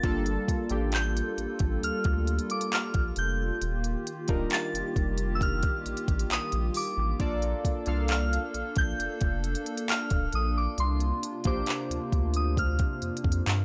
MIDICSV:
0, 0, Header, 1, 6, 480
1, 0, Start_track
1, 0, Key_signature, -2, "minor"
1, 0, Tempo, 895522
1, 19, Time_signature, 4, 2, 24, 8
1, 7316, End_track
2, 0, Start_track
2, 0, Title_t, "Synth bell"
2, 0, Program_c, 0, 98
2, 0, Note_on_c, 0, 93, 113
2, 506, Note_on_c, 0, 91, 108
2, 525, Note_off_c, 0, 93, 0
2, 987, Note_on_c, 0, 89, 97
2, 997, Note_off_c, 0, 91, 0
2, 1347, Note_on_c, 0, 86, 98
2, 1354, Note_off_c, 0, 89, 0
2, 1455, Note_off_c, 0, 86, 0
2, 1468, Note_on_c, 0, 89, 97
2, 1707, Note_on_c, 0, 91, 105
2, 1710, Note_off_c, 0, 89, 0
2, 2402, Note_off_c, 0, 91, 0
2, 2428, Note_on_c, 0, 93, 111
2, 2869, Note_on_c, 0, 88, 76
2, 2879, Note_off_c, 0, 93, 0
2, 2902, Note_off_c, 0, 88, 0
2, 2909, Note_on_c, 0, 89, 101
2, 3389, Note_on_c, 0, 87, 101
2, 3398, Note_off_c, 0, 89, 0
2, 3628, Note_on_c, 0, 86, 101
2, 3631, Note_off_c, 0, 87, 0
2, 4349, Note_on_c, 0, 89, 104
2, 4365, Note_off_c, 0, 86, 0
2, 4707, Note_on_c, 0, 91, 98
2, 4714, Note_off_c, 0, 89, 0
2, 5307, Note_on_c, 0, 89, 98
2, 5321, Note_off_c, 0, 91, 0
2, 5549, Note_on_c, 0, 87, 95
2, 5550, Note_off_c, 0, 89, 0
2, 5667, Note_off_c, 0, 87, 0
2, 5668, Note_on_c, 0, 86, 84
2, 5776, Note_off_c, 0, 86, 0
2, 5788, Note_on_c, 0, 84, 89
2, 6148, Note_on_c, 0, 86, 91
2, 6154, Note_off_c, 0, 84, 0
2, 6602, Note_off_c, 0, 86, 0
2, 6627, Note_on_c, 0, 87, 81
2, 6680, Note_off_c, 0, 87, 0
2, 6747, Note_on_c, 0, 89, 82
2, 7316, Note_off_c, 0, 89, 0
2, 7316, End_track
3, 0, Start_track
3, 0, Title_t, "Synth keys"
3, 0, Program_c, 1, 88
3, 0, Control_c, 1, 64, 127
3, 17, Note_on_c, 1, 55, 91
3, 19, Note_on_c, 1, 58, 89
3, 22, Note_on_c, 1, 62, 87
3, 24, Note_on_c, 1, 65, 89
3, 26, Control_c, 1, 64, 0
3, 26, Note_on_c, 1, 69, 109
3, 105, Control_c, 1, 64, 127
3, 286, Note_off_c, 1, 55, 0
3, 287, Note_off_c, 1, 58, 0
3, 289, Note_off_c, 1, 62, 0
3, 290, Note_off_c, 1, 65, 0
3, 291, Note_off_c, 1, 69, 0
3, 376, Note_on_c, 1, 55, 77
3, 379, Note_on_c, 1, 58, 68
3, 381, Note_on_c, 1, 62, 70
3, 383, Note_on_c, 1, 65, 68
3, 385, Note_on_c, 1, 67, 84
3, 1093, Note_off_c, 1, 55, 0
3, 1094, Note_off_c, 1, 58, 0
3, 1095, Note_off_c, 1, 62, 0
3, 1097, Note_off_c, 1, 65, 0
3, 1098, Note_off_c, 1, 67, 0
3, 1945, Control_c, 1, 64, 0
3, 2046, Control_c, 1, 64, 127
3, 2295, Note_on_c, 1, 55, 77
3, 2297, Note_on_c, 1, 62, 75
3, 2300, Note_on_c, 1, 63, 69
3, 2302, Note_on_c, 1, 65, 68
3, 2304, Note_on_c, 1, 70, 84
3, 3013, Note_off_c, 1, 55, 0
3, 3014, Note_off_c, 1, 62, 0
3, 3015, Note_off_c, 1, 63, 0
3, 3016, Note_off_c, 1, 65, 0
3, 3017, Note_off_c, 1, 70, 0
3, 3856, Note_on_c, 1, 58, 96
3, 3858, Note_on_c, 1, 62, 88
3, 3860, Note_on_c, 1, 65, 91
3, 3862, Note_on_c, 1, 69, 88
3, 3865, Note_on_c, 1, 74, 112
3, 3866, Control_c, 1, 64, 0
3, 3964, Control_c, 1, 64, 127
3, 4126, Note_off_c, 1, 58, 0
3, 4127, Note_off_c, 1, 62, 0
3, 4128, Note_off_c, 1, 65, 0
3, 4129, Note_off_c, 1, 69, 0
3, 4130, Note_off_c, 1, 74, 0
3, 4216, Note_on_c, 1, 58, 74
3, 4218, Note_on_c, 1, 62, 73
3, 4221, Note_on_c, 1, 65, 68
3, 4223, Note_on_c, 1, 69, 72
3, 4225, Note_on_c, 1, 77, 89
3, 4933, Note_off_c, 1, 58, 0
3, 4934, Note_off_c, 1, 62, 0
3, 4935, Note_off_c, 1, 65, 0
3, 4937, Note_off_c, 1, 69, 0
3, 4938, Note_off_c, 1, 77, 0
3, 5787, Control_c, 1, 64, 0
3, 5874, Control_c, 1, 64, 127
3, 6136, Note_on_c, 1, 58, 78
3, 6138, Note_on_c, 1, 62, 71
3, 6141, Note_on_c, 1, 65, 68
3, 6143, Note_on_c, 1, 67, 71
3, 6145, Note_on_c, 1, 72, 83
3, 6853, Note_off_c, 1, 58, 0
3, 6854, Note_off_c, 1, 62, 0
3, 6855, Note_off_c, 1, 65, 0
3, 6857, Note_off_c, 1, 67, 0
3, 6858, Note_off_c, 1, 72, 0
3, 7316, End_track
4, 0, Start_track
4, 0, Title_t, "Analog synth pad"
4, 0, Program_c, 2, 89
4, 0, Note_on_c, 2, 65, 87
4, 18, Note_on_c, 2, 69, 74
4, 19, Note_on_c, 2, 55, 78
4, 19, Note_on_c, 2, 58, 88
4, 1919, Note_off_c, 2, 69, 0
4, 1920, Note_off_c, 2, 55, 0
4, 1920, Note_off_c, 2, 58, 0
4, 1939, Note_on_c, 2, 51, 83
4, 1939, Note_on_c, 2, 58, 76
4, 1939, Note_on_c, 2, 67, 86
4, 3838, Note_off_c, 2, 65, 0
4, 3840, Note_off_c, 2, 51, 0
4, 3840, Note_off_c, 2, 58, 0
4, 3840, Note_off_c, 2, 67, 0
4, 3858, Note_on_c, 2, 69, 79
4, 3859, Note_on_c, 2, 58, 71
4, 3859, Note_on_c, 2, 62, 88
4, 5759, Note_off_c, 2, 58, 0
4, 5759, Note_off_c, 2, 69, 0
4, 5779, Note_on_c, 2, 58, 69
4, 5779, Note_on_c, 2, 65, 90
4, 5780, Note_on_c, 2, 48, 80
4, 7316, Note_off_c, 2, 48, 0
4, 7316, Note_off_c, 2, 58, 0
4, 7316, Note_off_c, 2, 62, 0
4, 7316, Note_off_c, 2, 65, 0
4, 7316, End_track
5, 0, Start_track
5, 0, Title_t, "Sub bass"
5, 0, Program_c, 3, 38
5, 19, Note_on_c, 3, 31, 109
5, 203, Note_off_c, 3, 31, 0
5, 378, Note_on_c, 3, 33, 93
5, 654, Note_off_c, 3, 33, 0
5, 738, Note_on_c, 3, 33, 49
5, 786, Note_off_c, 3, 33, 0
5, 859, Note_on_c, 3, 33, 90
5, 951, Note_off_c, 3, 33, 0
5, 978, Note_on_c, 3, 38, 51
5, 1026, Note_off_c, 3, 38, 0
5, 1099, Note_on_c, 3, 38, 85
5, 1283, Note_off_c, 3, 38, 0
5, 1579, Note_on_c, 3, 34, 83
5, 1671, Note_off_c, 3, 34, 0
5, 1698, Note_on_c, 3, 29, 102
5, 1882, Note_off_c, 3, 29, 0
5, 1939, Note_on_c, 3, 27, 97
5, 2123, Note_off_c, 3, 27, 0
5, 2299, Note_on_c, 3, 26, 89
5, 2391, Note_off_c, 3, 26, 0
5, 2539, Note_on_c, 3, 29, 48
5, 2587, Note_off_c, 3, 29, 0
5, 2659, Note_on_c, 3, 29, 93
5, 3027, Note_off_c, 3, 29, 0
5, 3139, Note_on_c, 3, 33, 48
5, 3187, Note_off_c, 3, 33, 0
5, 3259, Note_on_c, 3, 33, 92
5, 3351, Note_off_c, 3, 33, 0
5, 3379, Note_on_c, 3, 34, 48
5, 3427, Note_off_c, 3, 34, 0
5, 3500, Note_on_c, 3, 34, 93
5, 3591, Note_off_c, 3, 34, 0
5, 3739, Note_on_c, 3, 33, 95
5, 3831, Note_off_c, 3, 33, 0
5, 3859, Note_on_c, 3, 34, 113
5, 4043, Note_off_c, 3, 34, 0
5, 4219, Note_on_c, 3, 36, 106
5, 4494, Note_off_c, 3, 36, 0
5, 4579, Note_on_c, 3, 34, 47
5, 4627, Note_off_c, 3, 34, 0
5, 4699, Note_on_c, 3, 34, 93
5, 4791, Note_off_c, 3, 34, 0
5, 4819, Note_on_c, 3, 29, 48
5, 4867, Note_off_c, 3, 29, 0
5, 4939, Note_on_c, 3, 29, 84
5, 5123, Note_off_c, 3, 29, 0
5, 5419, Note_on_c, 3, 26, 95
5, 5511, Note_off_c, 3, 26, 0
5, 5539, Note_on_c, 3, 34, 102
5, 5723, Note_off_c, 3, 34, 0
5, 5779, Note_on_c, 3, 36, 110
5, 5963, Note_off_c, 3, 36, 0
5, 6139, Note_on_c, 3, 34, 86
5, 6231, Note_off_c, 3, 34, 0
5, 6380, Note_on_c, 3, 38, 50
5, 6427, Note_off_c, 3, 38, 0
5, 6499, Note_on_c, 3, 38, 86
5, 6866, Note_off_c, 3, 38, 0
5, 6979, Note_on_c, 3, 41, 46
5, 7027, Note_off_c, 3, 41, 0
5, 7098, Note_on_c, 3, 41, 90
5, 7191, Note_off_c, 3, 41, 0
5, 7219, Note_on_c, 3, 43, 93
5, 7311, Note_off_c, 3, 43, 0
5, 7316, End_track
6, 0, Start_track
6, 0, Title_t, "Drums"
6, 18, Note_on_c, 9, 42, 60
6, 19, Note_on_c, 9, 36, 121
6, 72, Note_off_c, 9, 42, 0
6, 73, Note_off_c, 9, 36, 0
6, 139, Note_on_c, 9, 42, 50
6, 192, Note_off_c, 9, 42, 0
6, 259, Note_on_c, 9, 36, 90
6, 261, Note_on_c, 9, 42, 83
6, 313, Note_off_c, 9, 36, 0
6, 315, Note_off_c, 9, 42, 0
6, 372, Note_on_c, 9, 42, 53
6, 426, Note_off_c, 9, 42, 0
6, 492, Note_on_c, 9, 42, 64
6, 505, Note_on_c, 9, 39, 100
6, 546, Note_off_c, 9, 42, 0
6, 558, Note_off_c, 9, 39, 0
6, 625, Note_on_c, 9, 42, 70
6, 679, Note_off_c, 9, 42, 0
6, 740, Note_on_c, 9, 42, 52
6, 794, Note_off_c, 9, 42, 0
6, 853, Note_on_c, 9, 42, 61
6, 859, Note_on_c, 9, 36, 97
6, 907, Note_off_c, 9, 42, 0
6, 912, Note_off_c, 9, 36, 0
6, 983, Note_on_c, 9, 42, 71
6, 1037, Note_off_c, 9, 42, 0
6, 1094, Note_on_c, 9, 42, 48
6, 1099, Note_on_c, 9, 36, 91
6, 1148, Note_off_c, 9, 42, 0
6, 1152, Note_off_c, 9, 36, 0
6, 1219, Note_on_c, 9, 42, 40
6, 1272, Note_off_c, 9, 42, 0
6, 1279, Note_on_c, 9, 42, 52
6, 1332, Note_off_c, 9, 42, 0
6, 1339, Note_on_c, 9, 42, 65
6, 1393, Note_off_c, 9, 42, 0
6, 1399, Note_on_c, 9, 42, 76
6, 1453, Note_off_c, 9, 42, 0
6, 1462, Note_on_c, 9, 42, 66
6, 1465, Note_on_c, 9, 39, 108
6, 1515, Note_off_c, 9, 42, 0
6, 1519, Note_off_c, 9, 39, 0
6, 1576, Note_on_c, 9, 42, 55
6, 1579, Note_on_c, 9, 36, 103
6, 1629, Note_off_c, 9, 42, 0
6, 1632, Note_off_c, 9, 36, 0
6, 1694, Note_on_c, 9, 42, 54
6, 1748, Note_off_c, 9, 42, 0
6, 1938, Note_on_c, 9, 42, 58
6, 1991, Note_off_c, 9, 42, 0
6, 2058, Note_on_c, 9, 42, 50
6, 2112, Note_off_c, 9, 42, 0
6, 2181, Note_on_c, 9, 42, 81
6, 2234, Note_off_c, 9, 42, 0
6, 2293, Note_on_c, 9, 42, 51
6, 2299, Note_on_c, 9, 36, 97
6, 2346, Note_off_c, 9, 42, 0
6, 2353, Note_off_c, 9, 36, 0
6, 2412, Note_on_c, 9, 42, 67
6, 2424, Note_on_c, 9, 39, 107
6, 2466, Note_off_c, 9, 42, 0
6, 2478, Note_off_c, 9, 39, 0
6, 2546, Note_on_c, 9, 42, 69
6, 2599, Note_off_c, 9, 42, 0
6, 2659, Note_on_c, 9, 36, 92
6, 2661, Note_on_c, 9, 42, 50
6, 2713, Note_off_c, 9, 36, 0
6, 2714, Note_off_c, 9, 42, 0
6, 2774, Note_on_c, 9, 42, 59
6, 2828, Note_off_c, 9, 42, 0
6, 2899, Note_on_c, 9, 36, 88
6, 2904, Note_on_c, 9, 42, 69
6, 2953, Note_off_c, 9, 36, 0
6, 2958, Note_off_c, 9, 42, 0
6, 3015, Note_on_c, 9, 42, 49
6, 3019, Note_on_c, 9, 36, 90
6, 3069, Note_off_c, 9, 42, 0
6, 3073, Note_off_c, 9, 36, 0
6, 3140, Note_on_c, 9, 42, 40
6, 3193, Note_off_c, 9, 42, 0
6, 3200, Note_on_c, 9, 42, 50
6, 3254, Note_off_c, 9, 42, 0
6, 3259, Note_on_c, 9, 36, 91
6, 3260, Note_on_c, 9, 42, 67
6, 3313, Note_off_c, 9, 36, 0
6, 3313, Note_off_c, 9, 42, 0
6, 3320, Note_on_c, 9, 42, 72
6, 3373, Note_off_c, 9, 42, 0
6, 3382, Note_on_c, 9, 42, 64
6, 3385, Note_on_c, 9, 39, 109
6, 3435, Note_off_c, 9, 42, 0
6, 3439, Note_off_c, 9, 39, 0
6, 3495, Note_on_c, 9, 42, 54
6, 3549, Note_off_c, 9, 42, 0
6, 3614, Note_on_c, 9, 46, 61
6, 3668, Note_off_c, 9, 46, 0
6, 3858, Note_on_c, 9, 42, 62
6, 3859, Note_on_c, 9, 36, 108
6, 3911, Note_off_c, 9, 42, 0
6, 3912, Note_off_c, 9, 36, 0
6, 3978, Note_on_c, 9, 42, 52
6, 4032, Note_off_c, 9, 42, 0
6, 4099, Note_on_c, 9, 36, 99
6, 4101, Note_on_c, 9, 42, 82
6, 4153, Note_off_c, 9, 36, 0
6, 4154, Note_off_c, 9, 42, 0
6, 4212, Note_on_c, 9, 42, 48
6, 4266, Note_off_c, 9, 42, 0
6, 4332, Note_on_c, 9, 42, 67
6, 4344, Note_on_c, 9, 39, 107
6, 4386, Note_off_c, 9, 42, 0
6, 4398, Note_off_c, 9, 39, 0
6, 4465, Note_on_c, 9, 42, 69
6, 4519, Note_off_c, 9, 42, 0
6, 4579, Note_on_c, 9, 42, 51
6, 4633, Note_off_c, 9, 42, 0
6, 4693, Note_on_c, 9, 42, 56
6, 4699, Note_on_c, 9, 36, 99
6, 4747, Note_off_c, 9, 42, 0
6, 4752, Note_off_c, 9, 36, 0
6, 4823, Note_on_c, 9, 42, 67
6, 4877, Note_off_c, 9, 42, 0
6, 4934, Note_on_c, 9, 42, 50
6, 4939, Note_on_c, 9, 36, 87
6, 4988, Note_off_c, 9, 42, 0
6, 4992, Note_off_c, 9, 36, 0
6, 5059, Note_on_c, 9, 42, 40
6, 5112, Note_off_c, 9, 42, 0
6, 5119, Note_on_c, 9, 42, 51
6, 5173, Note_off_c, 9, 42, 0
6, 5179, Note_on_c, 9, 42, 63
6, 5233, Note_off_c, 9, 42, 0
6, 5239, Note_on_c, 9, 42, 74
6, 5293, Note_off_c, 9, 42, 0
6, 5301, Note_on_c, 9, 42, 71
6, 5305, Note_on_c, 9, 39, 110
6, 5355, Note_off_c, 9, 42, 0
6, 5359, Note_off_c, 9, 39, 0
6, 5415, Note_on_c, 9, 42, 57
6, 5419, Note_on_c, 9, 36, 98
6, 5469, Note_off_c, 9, 42, 0
6, 5473, Note_off_c, 9, 36, 0
6, 5534, Note_on_c, 9, 42, 56
6, 5588, Note_off_c, 9, 42, 0
6, 5778, Note_on_c, 9, 42, 58
6, 5831, Note_off_c, 9, 42, 0
6, 5898, Note_on_c, 9, 42, 49
6, 5951, Note_off_c, 9, 42, 0
6, 6020, Note_on_c, 9, 42, 82
6, 6074, Note_off_c, 9, 42, 0
6, 6132, Note_on_c, 9, 42, 51
6, 6139, Note_on_c, 9, 36, 97
6, 6185, Note_off_c, 9, 42, 0
6, 6192, Note_off_c, 9, 36, 0
6, 6252, Note_on_c, 9, 42, 68
6, 6264, Note_on_c, 9, 39, 100
6, 6305, Note_off_c, 9, 42, 0
6, 6318, Note_off_c, 9, 39, 0
6, 6385, Note_on_c, 9, 42, 67
6, 6438, Note_off_c, 9, 42, 0
6, 6499, Note_on_c, 9, 36, 89
6, 6499, Note_on_c, 9, 42, 54
6, 6552, Note_off_c, 9, 36, 0
6, 6553, Note_off_c, 9, 42, 0
6, 6612, Note_on_c, 9, 42, 58
6, 6666, Note_off_c, 9, 42, 0
6, 6739, Note_on_c, 9, 36, 89
6, 6743, Note_on_c, 9, 42, 71
6, 6792, Note_off_c, 9, 36, 0
6, 6796, Note_off_c, 9, 42, 0
6, 6854, Note_on_c, 9, 42, 49
6, 6859, Note_on_c, 9, 36, 90
6, 6908, Note_off_c, 9, 42, 0
6, 6912, Note_off_c, 9, 36, 0
6, 6978, Note_on_c, 9, 42, 41
6, 7032, Note_off_c, 9, 42, 0
6, 7058, Note_on_c, 9, 42, 54
6, 7099, Note_on_c, 9, 36, 86
6, 7111, Note_off_c, 9, 42, 0
6, 7139, Note_on_c, 9, 42, 78
6, 7152, Note_off_c, 9, 36, 0
6, 7192, Note_off_c, 9, 42, 0
6, 7221, Note_on_c, 9, 42, 68
6, 7225, Note_on_c, 9, 39, 106
6, 7275, Note_off_c, 9, 42, 0
6, 7278, Note_off_c, 9, 39, 0
6, 7316, End_track
0, 0, End_of_file